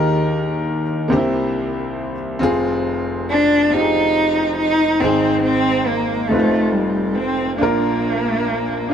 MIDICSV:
0, 0, Header, 1, 3, 480
1, 0, Start_track
1, 0, Tempo, 865801
1, 1335, Time_signature, 6, 3, 24, 8
1, 4955, End_track
2, 0, Start_track
2, 0, Title_t, "Grand piano"
2, 0, Program_c, 0, 0
2, 0, Control_c, 0, 64, 127
2, 0, Note_on_c, 0, 39, 75
2, 0, Note_on_c, 0, 51, 84
2, 0, Note_on_c, 0, 63, 92
2, 0, Note_on_c, 0, 67, 88
2, 0, Note_on_c, 0, 70, 104
2, 447, Note_off_c, 0, 63, 0
2, 451, Note_off_c, 0, 67, 0
2, 474, Note_off_c, 0, 70, 0
2, 589, Note_off_c, 0, 51, 0
2, 590, Note_off_c, 0, 39, 0
2, 599, Note_on_c, 0, 58, 81
2, 609, Note_on_c, 0, 60, 72
2, 610, Note_on_c, 0, 36, 78
2, 612, Note_on_c, 0, 48, 75
2, 612, Note_on_c, 0, 62, 59
2, 618, Note_on_c, 0, 67, 78
2, 622, Control_c, 0, 64, 0
2, 623, Note_on_c, 0, 72, 88
2, 646, Note_on_c, 0, 64, 78
2, 649, Note_off_c, 0, 62, 0
2, 719, Control_c, 0, 64, 127
2, 1167, Note_off_c, 0, 58, 0
2, 1171, Note_off_c, 0, 60, 0
2, 1176, Note_off_c, 0, 67, 0
2, 1178, Note_off_c, 0, 72, 0
2, 1190, Note_off_c, 0, 64, 0
2, 1311, Note_off_c, 0, 36, 0
2, 1312, Note_off_c, 0, 48, 0
2, 1326, Note_on_c, 0, 60, 90
2, 1335, Note_on_c, 0, 65, 80
2, 1336, Note_on_c, 0, 29, 74
2, 1337, Note_on_c, 0, 41, 81
2, 1343, Control_c, 0, 64, 0
2, 1347, Note_on_c, 0, 68, 110
2, 1455, Control_c, 0, 64, 127
2, 1890, Note_off_c, 0, 60, 0
2, 1895, Note_off_c, 0, 65, 0
2, 1901, Note_off_c, 0, 68, 0
2, 2053, Note_on_c, 0, 60, 70
2, 2063, Note_on_c, 0, 65, 61
2, 2075, Note_on_c, 0, 67, 60
2, 2101, Note_off_c, 0, 67, 0
2, 2110, Note_on_c, 0, 68, 78
2, 2614, Note_off_c, 0, 60, 0
2, 2619, Note_off_c, 0, 65, 0
2, 2642, Note_off_c, 0, 68, 0
2, 2754, Note_off_c, 0, 29, 0
2, 2755, Note_off_c, 0, 41, 0
2, 2773, Note_on_c, 0, 60, 77
2, 2778, Note_on_c, 0, 44, 70
2, 2780, Note_on_c, 0, 32, 66
2, 2781, Note_on_c, 0, 63, 76
2, 2782, Control_c, 0, 64, 0
2, 2793, Note_on_c, 0, 68, 96
2, 2874, Control_c, 0, 64, 127
2, 3334, Note_off_c, 0, 60, 0
2, 3338, Note_off_c, 0, 63, 0
2, 3344, Note_off_c, 0, 68, 0
2, 3475, Note_off_c, 0, 44, 0
2, 3476, Note_off_c, 0, 32, 0
2, 3486, Note_on_c, 0, 57, 70
2, 3494, Note_on_c, 0, 60, 66
2, 3496, Note_on_c, 0, 41, 68
2, 3497, Note_on_c, 0, 63, 65
2, 3499, Note_on_c, 0, 29, 68
2, 3502, Note_on_c, 0, 65, 65
2, 3504, Control_c, 0, 64, 0
2, 3509, Note_on_c, 0, 71, 62
2, 3538, Note_off_c, 0, 71, 0
2, 3542, Note_on_c, 0, 72, 77
2, 3601, Control_c, 0, 64, 127
2, 4050, Note_off_c, 0, 57, 0
2, 4055, Note_off_c, 0, 60, 0
2, 4056, Note_off_c, 0, 63, 0
2, 4058, Note_off_c, 0, 65, 0
2, 4078, Note_off_c, 0, 72, 0
2, 4194, Note_off_c, 0, 41, 0
2, 4196, Note_off_c, 0, 29, 0
2, 4205, Note_on_c, 0, 62, 83
2, 4218, Note_on_c, 0, 34, 67
2, 4219, Note_on_c, 0, 46, 67
2, 4219, Note_on_c, 0, 65, 72
2, 4223, Control_c, 0, 64, 0
2, 4229, Note_on_c, 0, 70, 93
2, 4317, Control_c, 0, 64, 127
2, 4770, Note_off_c, 0, 62, 0
2, 4777, Note_off_c, 0, 65, 0
2, 4782, Note_off_c, 0, 70, 0
2, 4928, Note_on_c, 0, 62, 75
2, 4955, Note_off_c, 0, 34, 0
2, 4955, Note_off_c, 0, 46, 0
2, 4955, Note_off_c, 0, 62, 0
2, 4955, End_track
3, 0, Start_track
3, 0, Title_t, "Cello"
3, 0, Program_c, 1, 42
3, 1826, Note_on_c, 1, 62, 110
3, 2064, Note_on_c, 1, 63, 105
3, 2072, Note_off_c, 1, 62, 0
3, 2526, Note_off_c, 1, 63, 0
3, 2529, Note_on_c, 1, 63, 113
3, 2772, Note_on_c, 1, 60, 97
3, 2781, Note_off_c, 1, 63, 0
3, 3004, Note_off_c, 1, 60, 0
3, 3007, Note_on_c, 1, 60, 112
3, 3249, Note_on_c, 1, 58, 94
3, 3258, Note_off_c, 1, 60, 0
3, 3479, Note_on_c, 1, 57, 97
3, 3487, Note_off_c, 1, 58, 0
3, 3720, Note_on_c, 1, 55, 85
3, 3728, Note_off_c, 1, 57, 0
3, 3960, Note_on_c, 1, 60, 99
3, 3969, Note_off_c, 1, 55, 0
3, 4192, Note_off_c, 1, 60, 0
3, 4195, Note_on_c, 1, 58, 91
3, 4955, Note_off_c, 1, 58, 0
3, 4955, End_track
0, 0, End_of_file